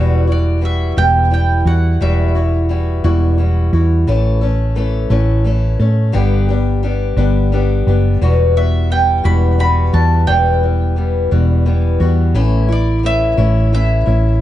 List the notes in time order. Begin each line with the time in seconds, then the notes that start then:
Already playing: E1 E2 B2 E3 G3 E4 F#4
0.27 E3 G3 E4 F#4
0.32 D5
0.61 E3 G3 E4 F#4
0.65 E5
0.97 E1 E2 B2 E3 G3 E4 G5
1.30 E3 G3 E4 G5
1.65 E2 E3 G3 E4 F#4 F#5
2.01 E1 E2 B2 E3 G3 E4 F#4 E5
2.35 E3 G3 E4 F#4
2.69 E3 G3 E4 F#4
3.04 E1 E2 B2 E3 G3 E4 F#4
3.38 E3 G3 E4 F#4
3.73 E2 E3 G3 E4 F#4
4.07 A1 A2 E3 A3 C#4 A4
4.41 A3 C#4 A4
4.75 E3 A3 C#4 A4
5.10 A1 A2 E3 A3 C#4 A4
5.44 E3 A3 C#4 A4
5.79 A2 A3 C#4 A4
6.12 G1 G2 D3 G3 B3 D4 G4
6.49 G3 B3 D4 G4
6.83 G3 B3 D4 G4
7.17 G1 G2 D3 G3 B3 D4 G4
7.52 G3 B3 D4 G4
7.87 F#1 G3 B3 D4 G4
8.21 E1 E2 B2 E3 G3 B3 F#4
8.56 E3 G3 B3 F#4 E5
8.90 E3 G3 B3 G5
9.24 E1 E2 B2 E3 G3 B3 F#4 B5
9.58 E3 G3 B3 F#4 B5
9.93 E2 E3 G3 B3 F#4 A5
10.27 E1 E2 B2 E3 G3 B3 G5
10.63 E3 G3 B3
10.96 E3 G3 B3
11.31 E1 E2 B2 E3 G3 B3
11.66 E3 G3 B3
12.00 E2 E3 G3 B3 F#4
12.34 A1 A2 E3 A3 C#4 E4
12.68 A3 E4
12.72 D5
13.03 E3 A3 C#4 E4 E5
13.37 A1 A2 E3 A3 C#4 E4
13.72 E3 A3 C#4 E4 E5
14.06 A1 A3 C#4 E4